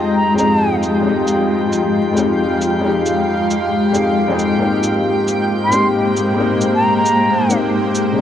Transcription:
Already playing: felt piano F2 G#3 C4 D#4 G4, ambient pad G#3 F4 D#5 G5, synth texture G4 G5
0.16 flute A#5
0.34 felt piano F2 G#3 C4
0.38 felt piano D#4 G4, flute A#5, cabasa
0.83 cabasa
1.01 felt piano F2 G#3 C4
1.05 felt piano D#4 G4, ambient pad F5
1.27 cabasa
1.72 cabasa
2.13 felt piano F2 G#3
2.17 felt piano C4 D#4, cabasa
2.21 felt piano G4
2.61 cabasa
2.79 felt piano F2 G#3
2.83 felt piano C4 D#4 G4
3.06 cabasa
3.50 cabasa
3.92 felt piano F2 G#3 C4 D#4, cabasa
3.96 felt piano G4
4.28 felt piano F2 G#3 C4 D#4
4.32 felt piano G#4
4.39 cabasa
4.56 felt piano G#2 A#3 C4
4.61 ambient pad G#3 A#3 C5, felt piano D#4 G4
4.83 cabasa
5.28 cabasa
5.64 felt piano G#2, flute C6
5.70 felt piano A#3 C4 D#4, cabasa
5.75 felt piano G4
6.17 cabasa
6.34 felt piano G#2 A#3 C4
6.40 felt piano D#4 G4
6.61 cabasa
6.75 flute A#5
6.97 flute A#5
7.06 cabasa
7.46 felt piano G#2 A#3 C4
7.50 felt piano D#4 G4, cabasa
7.95 cabasa
8.13 felt piano C#3 G#3 C4

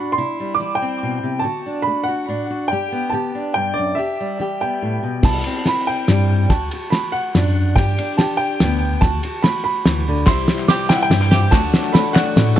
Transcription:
Already playing: steel-string acoustic guitar A2 D4 F#4, upright piano B5
0.12 upright piano C6
0.18 steel-string acoustic guitar C3 E4
0.40 steel-string acoustic guitar G3
0.55 upright piano D6
0.60 steel-string acoustic guitar E3 E4
0.75 upright piano G5
0.82 steel-string acoustic guitar C4
1.03 steel-string acoustic guitar B2
1.23 steel-string acoustic guitar C3
1.39 upright piano A5
1.44 steel-string acoustic guitar D3 F#4
1.66 steel-string acoustic guitar D4
1.82 upright piano B5
1.87 steel-string acoustic guitar A3 F#4
2.04 upright piano F#5
2.08 steel-string acoustic guitar F#4
2.28 steel-string acoustic guitar A2 D4
2.51 steel-string acoustic guitar F#4
2.68 steel-string acoustic guitar G2, upright piano G5
2.73 steel-string acoustic guitar G4
2.92 steel-string acoustic guitar B3
3.10 steel-string acoustic guitar D3, upright piano A5
3.14 steel-string acoustic guitar G4
3.35 steel-string acoustic guitar D4
3.54 steel-string acoustic guitar G2, upright piano G5
3.74 steel-string acoustic guitar F#2, upright piano D5
3.95 steel-string acoustic guitar E2, upright piano E5
3.99 steel-string acoustic guitar G4
4.20 steel-string acoustic guitar G3
4.40 steel-string acoustic guitar E3 G4
4.61 steel-string acoustic guitar B3, upright piano G5
4.82 steel-string acoustic guitar A2
5.03 steel-string acoustic guitar B2
5.23 tine electric piano C2, steel-string acoustic guitar C3 E4, upright piano A5, kick, snare, crash
5.44 steel-string acoustic guitar C4, ride
5.66 steel-string acoustic guitar E3 E4, upright piano B5, snare, ride
5.87 upright piano G5
6.08 steel-string acoustic guitar G2 G3, tine electric piano G2, snare, ride
6.50 steel-string acoustic guitar D3 F#4, upright piano A5, kick, snare, ride
6.71 steel-string acoustic guitar F#4, ride
6.90 steel-string acoustic guitar A3 F#4, upright piano B5, snare, ride
7.12 upright piano F#5
7.35 tine electric piano F#2, steel-string acoustic guitar A2 D4, snare, ride
7.76 tine electric piano G2, steel-string acoustic guitar G2 G4, upright piano G5, kick, snare, ride
7.98 steel-string acoustic guitar D4, ride
8.17 steel-string acoustic guitar D3 G4, upright piano A5, snare, ride
8.37 upright piano G5
8.60 tine electric piano D2, steel-string acoustic guitar G2 B3, snare, ride
9.01 tine electric piano D2, steel-string acoustic guitar D3 F#4, upright piano A5, kick, snare, ride
9.23 steel-string acoustic guitar F#4, ride
9.43 steel-string acoustic guitar A3 F#4, upright piano B5, snare, ride
9.64 upright piano B5
9.86 tine electric piano D2, steel-string acoustic guitar E3, snare, ride
10.08 steel-string acoustic guitar D3
10.26 tine electric piano C2, grand piano C2 C3 G3 E4 C5 E5, harmonium C3 G3 E4, steel-string acoustic guitar C3 E3 G3 C4 G4, five-string banjo E4, upright piano C6, kick, snare, clap, ride, tambourine
10.48 grand piano G3 E4 C5 E5, snare, ride
10.59 clap
10.68 steel-string acoustic guitar E3 G3 C4 G4, grand piano G3 E4 C5 E5, five-string banjo G4, upright piano D6, snare, ride
10.80 clap
10.89 grand piano G3 E4 C5 E5, five-string banjo E4, upright piano G5, snare, clap, tambourine
10.95 upright piano F#5
11.01 upright piano G5, clap
11.10 tine electric piano G2, steel-string acoustic guitar E3 G3 C4 G4, grand piano G3 E4 C5 E5, snare, clap, ride
11.22 clap
11.31 grand piano G3 E4 C5 E5, steel-string acoustic guitar G3 C4 G4, five-string banjo G4, snare
11.51 tine electric piano D2, grand piano D2 D3 F#3 D4 A4 D5, steel-string acoustic guitar D3 A3 D4 F#4, harmonium D3 A3 F#4, five-string banjo F#4, upright piano A5, kick, snare, clap, ride, tambourine
11.74 grand piano F#3 D4 A4 D5, snare, ride
11.83 clap
11.93 steel-string acoustic guitar D3 A3 D4, five-string banjo A4, grand piano A4 D5, upright piano B5, snare, ride
11.97 grand piano F#3 D4, steel-string acoustic guitar F#4
12.05 clap
12.13 grand piano F#3 D4 A4, five-string banjo F#4, upright piano F#5, snare, clap, tambourine
12.17 grand piano D5
12.26 clap
12.36 tine electric piano A2, steel-string acoustic guitar D3 A3 D4 F#4, grand piano F#3 D4 A4, snare, clap, ride
12.56 five-string banjo A4

